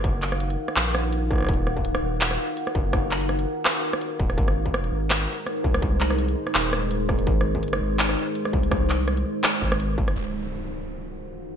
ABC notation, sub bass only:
X:1
M:4/4
L:1/8
Q:"Swing 16ths" 1/4=166
K:Ebdor
V:1 name="Sub bass" clef=bass
G,,,3 z B,,,4 | E,,,3 E,,,2 z2 G,,,- | G,,,3 z4 E,,, | A,,,3 A,,,2 z2 C,,- |
C,,3 z E,,,4 | A,,,3 A,,,2 z2 C,,- | C,,3 z2 A,,,2 A,,, | z8 |]